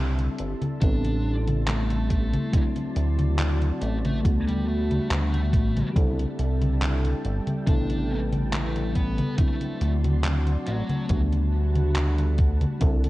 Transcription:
Already playing: C2 G3 C4 D4 E4 A4 E5 A5 C6
0.19 closed hi-hat, high conga
0.38 G1, closed hi-hat
0.62 closed hi-hat, high conga
0.80 A1 G3 B3 C4 D4 E4 A4 C6, kick, closed hi-hat, high conga
1.04 closed hi-hat, high conga
1.47 closed hi-hat, high conga
1.67 A3, clap, closed hi-hat, high conga
1.90 closed hi-hat, high conga
2.10 A3, kick, closed hi-hat
2.33 closed hi-hat, high conga
2.52 F#3 A3 C4 D4 E4 F#4 D5, kick, closed hi-hat, high conga
2.76 closed hi-hat, high conga
2.96 D2, closed hi-hat
3.19 closed hi-hat, high conga
3.39 clap, closed hi-hat, high conga
3.62 closed hi-hat, high conga
3.82 A1 A3, closed hi-hat
4.05 A3, closed hi-hat, high conga
4.23 D2 G3 A3 B3 D4 F#4 F#5 B5, kick, closed hi-hat, high conga
4.48 G3, closed hi-hat, high conga
4.68 A3
4.91 closed hi-hat, high conga
5.10 D2, clap, closed hi-hat, high conga
5.34 closed hi-hat, high conga
5.53 A1, kick, closed hi-hat
5.77 closed hi-hat, high conga
5.94 C2 G3 C4 D4 E4 A4 E5 G5 A5, kick, closed hi-hat, high conga
6.19 closed hi-hat, high conga
6.39 C2, closed hi-hat
6.62 closed hi-hat, high conga
6.82 clap, closed hi-hat, high conga
7.05 closed hi-hat, high conga
7.25 G1, closed hi-hat
7.47 closed hi-hat, high conga
7.66 A1 C3 G3 B3 D4 E4 A4 B4 A5, kick, closed hi-hat, high conga
7.90 closed hi-hat, high conga
8.33 closed hi-hat, high conga
8.52 A3, clap, closed hi-hat, high conga
8.76 closed hi-hat, high conga
8.95 B3, kick, closed hi-hat
9.18 closed hi-hat, high conga
9.37 F#3 A3 C4 D4 E4 F#4 D5 A5 C6, kick, closed hi-hat, high conga
9.61 closed hi-hat, high conga
9.81 D2, closed hi-hat
10.04 closed hi-hat, high conga
10.24 clap, closed hi-hat, high conga
10.47 closed hi-hat, high conga
10.66 A1 F#3, closed hi-hat
10.89 closed hi-hat, high conga
11.08 D2 G3 A3 B3 D4 F#4 F#5 B5, kick, closed hi-hat, high conga
11.32 closed hi-hat, high conga
11.75 closed hi-hat, high conga
11.95 clap, closed hi-hat, high conga
12.18 closed hi-hat, high conga
12.38 kick, closed hi-hat
12.61 closed hi-hat, high conga
12.79 C2 G3 C4 D4 E4 G4 A4 E5, kick, closed hi-hat, high conga
13.04 closed hi-hat, high conga

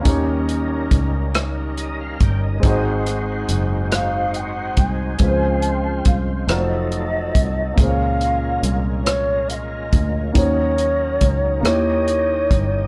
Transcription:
Already playing: A#4
0.01 G3 A#3 C#4 D#4 A#4
0.05 D#2 D#3 G4 C#5, kick, closed hi-hat
0.49 closed hi-hat
0.91 C#2, kick, closed hi-hat
1.34 cross-stick, closed hi-hat
1.77 D#5, closed hi-hat
2.00 F5
2.20 G1 G5, kick, closed hi-hat
2.44 D#5
2.60 G#1 G#2 G#3 C4 D#4, kick, closed hi-hat
2.65 G#3 D#4 F#4 C5
3.06 cross-stick, closed hi-hat
3.49 F#1, closed hi-hat
3.92 F5, cross-stick, closed hi-hat
4.34 G#5, closed hi-hat
4.40 F#5
4.77 C2 G#5, kick, closed hi-hat
5.19 C#2 F3 G#3 C4 C#4 F4 B4, kick, closed hi-hat
5.23 B4
5.28 C5
5.62 closed hi-hat
6.05 C2 F5, kick, closed hi-hat
6.47 F1 F3 F#3 A3 D#4 F4 F#4 A4 D5, cross-stick, closed hi-hat
6.52 A#4
6.58 C5
6.67 D#5
6.92 closed hi-hat
7.35 C2, kick, closed hi-hat
7.74 C#2 A#2 G#3 A#3 C4 C#4 F4 A#4 F5, kick, closed hi-hat
7.80 C#4 G#4 C5
7.88 C#5
8.21 closed hi-hat
8.63 C2, closed hi-hat
9.04 C#5, cross-stick, closed hi-hat
9.49 F5, closed hi-hat
9.53 D#5
9.93 D2, kick, closed hi-hat
10.32 D#2 D#3 F#3 A#3 C#4 D#4 F#4 A#4 C5 C#5, kick, closed hi-hat
10.43 C#5
10.78 closed hi-hat
11.21 C#2, kick, closed hi-hat
11.61 D#2 D#3 A#3 C#4 D#4 E4 F#4 G4 C#5 D#5
11.65 cross-stick, closed hi-hat
11.70 G4
12.08 closed hi-hat
12.51 G1, kick, closed hi-hat

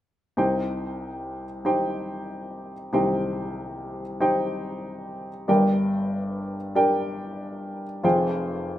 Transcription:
0.37 C2 C3 D#4 G4 C5 G5
1.65 D#4 G4 C5 G5
2.93 C2 C3 D#4 G4 C5 G5
4.20 D#4 G4 C5 G5
5.48 G1 G2 D4 G4 A#4 G5
6.75 D4 G4 A#4 G5
8.03 F1 F2 F4 G#4 C5 G5

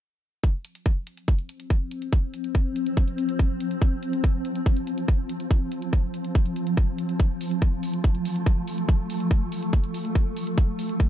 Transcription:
0.44 F3 C4, kick, closed hi-hat
0.65 closed hi-hat
0.75 closed hi-hat
0.86 kick, closed hi-hat
1.07 closed hi-hat
1.17 closed hi-hat
1.28 kick, closed hi-hat
1.39 closed hi-hat
1.49 closed hi-hat
1.60 closed hi-hat
1.70 kick, closed hi-hat
1.91 closed hi-hat
2.02 closed hi-hat
2.13 kick, closed hi-hat
2.34 closed hi-hat
2.44 closed hi-hat
2.55 kick, closed hi-hat
2.76 closed hi-hat
2.87 closed hi-hat
2.97 kick, closed hi-hat
3.08 closed hi-hat
3.18 closed hi-hat
3.29 closed hi-hat
3.39 kick, closed hi-hat
3.60 closed hi-hat
3.71 closed hi-hat
3.82 kick, closed hi-hat
4.03 closed hi-hat
4.13 closed hi-hat
4.24 kick, closed hi-hat
4.45 closed hi-hat
4.55 closed hi-hat
4.66 kick, closed hi-hat
4.77 closed hi-hat
4.87 closed hi-hat
4.98 closed hi-hat
5.08 kick, closed hi-hat
5.29 closed hi-hat
5.40 closed hi-hat
5.51 kick, closed hi-hat
5.72 closed hi-hat
5.82 closed hi-hat
5.93 kick, closed hi-hat
6.14 closed hi-hat
6.25 closed hi-hat
6.35 kick, closed hi-hat
6.46 closed hi-hat
6.56 closed hi-hat
6.67 closed hi-hat
6.77 kick, closed hi-hat
6.98 closed hi-hat
7.09 closed hi-hat
7.20 A3, kick, closed hi-hat
7.41 open hi-hat
7.51 closed hi-hat
7.62 kick, closed hi-hat
7.83 open hi-hat
7.94 closed hi-hat
8.04 kick, closed hi-hat
8.15 closed hi-hat
8.25 open hi-hat
8.36 closed hi-hat
8.46 kick, closed hi-hat
8.68 open hi-hat
8.78 closed hi-hat
8.89 kick, closed hi-hat
9.10 open hi-hat
9.20 closed hi-hat
9.31 kick, closed hi-hat
9.52 open hi-hat
9.63 closed hi-hat
9.73 kick, closed hi-hat
9.84 closed hi-hat
9.94 open hi-hat
10.05 closed hi-hat
10.15 kick, closed hi-hat
10.37 open hi-hat
10.47 closed hi-hat
10.58 kick, closed hi-hat
10.79 open hi-hat
10.89 closed hi-hat
11.00 kick, closed hi-hat

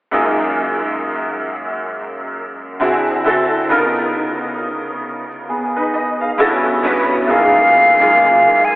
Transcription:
0.11 F#2 G#3 A#3 D#4 F4 G#4
2.80 D3 C4 E4 F#4 G#4
3.24 D3 C4 E4 F#4 A4
3.69 C#3 B3 D#4 F4 A#4
5.49 B3 G#4
5.76 D#4 B4
5.94 D#5
6.21 G#4 F5
6.38 G2 B3 C#4 E4 F#4 A4
6.83 G2 B3 C#4 E4 F#4 B4
7.24 F#2 E5
7.28 G#3 A#3 D#4 F4 G#4 F5
7.99 F#2 G#3 A#3 D#4 F4 G#4
8.65 G#5

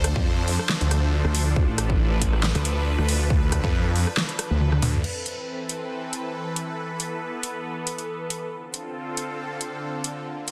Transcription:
Already playing: D2 F3 D4 A4 C5
0.04 cross-stick, closed hi-hat
0.16 F2, kick
0.48 open hi-hat
0.59 cross-stick
0.69 snare, clap
0.81 D2, closed hi-hat
0.91 cross-stick, closed hi-hat
1.25 D2, cross-stick
1.35 open hi-hat
1.56 D2 B4, kick
1.68 A1
1.78 cross-stick, closed hi-hat
1.90 kick
2.22 kick, closed hi-hat
2.33 cross-stick
2.43 snare, clap
2.55 D2, cross-stick, closed hi-hat
2.65 closed hi-hat
2.98 D2, cross-stick
3.09 open hi-hat
3.30 kick
3.52 kick, cross-stick, closed hi-hat
3.64 F2, kick
3.96 open hi-hat
4.07 cross-stick
4.17 snare, clap
4.29 closed hi-hat
4.39 cross-stick, closed hi-hat
4.51 D2
4.61 high tom
4.72 cross-stick, high tom
4.82 D2, open hi-hat, mid tom
4.94 mid tom
5.04 E3 C4 A4 B4, crash
5.26 closed hi-hat
5.69 closed hi-hat
6.13 closed hi-hat
6.56 closed hi-hat
6.78 B3
7.00 closed hi-hat
7.43 closed hi-hat
7.87 closed hi-hat
7.98 closed hi-hat
8.30 closed hi-hat
8.52 D3 C4 F4 A4
8.74 closed hi-hat
9.17 closed hi-hat
9.61 closed hi-hat
10.04 closed hi-hat
10.26 A#3 F4 A#4
10.48 closed hi-hat

